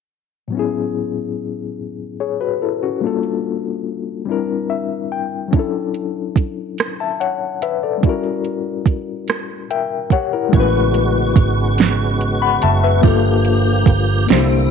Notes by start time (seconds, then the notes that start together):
0.48 A2 F#3
0.52 B3 C#4
0.57 E4 G#4
2.20 G#4 C#5
2.41 F#4 B4
2.62 E4 A4
2.83 C#4 F#4
3.01 G3 A#3 D4
3.05 F4 A4
4.26 G3 C4 D4 E4
4.32 A#4
4.70 E5
5.12 G5
5.48 F#3 C#4
5.53 D4 E4, kick, closed hi-hat
5.59 A4
5.94 closed hi-hat
6.36 kick, closed hi-hat
6.78 cross-stick, closed hi-hat
7.00 E5 A5
7.20 C#5 F#5, closed hi-hat
7.62 B4 E5, closed hi-hat
7.83 A4 D5
7.98 G3 C#4
8.03 E4 F#4, kick, closed hi-hat
8.09 A#4
8.45 closed hi-hat
8.86 kick, closed hi-hat
9.28 cross-stick, closed hi-hat
9.71 A#4 E5 G5, closed hi-hat
10.10 G4 C#5 F#5, kick, closed hi-hat
10.33 E4 A#4
10.49 G#3 C#4
10.53 A1 C#3 G#3 B3 E4 F#4, kick, closed hi-hat
10.57 F#4 B4
10.94 closed hi-hat
11.36 G#1, kick, closed hi-hat
11.78 snare, closed hi-hat
12.21 closed hi-hat
12.42 F#5 B5
12.62 F#1 E5 A5, closed hi-hat
12.84 B4 E5
13.01 G1 F3 A#3 D4 F4 G4, kick, closed hi-hat
13.06 G4 A4
13.45 closed hi-hat
13.86 G1, kick, closed hi-hat
14.27 C2 D3 A#3 D4 D#4 E4, snare, closed hi-hat
14.31 G4 C5
14.36 E4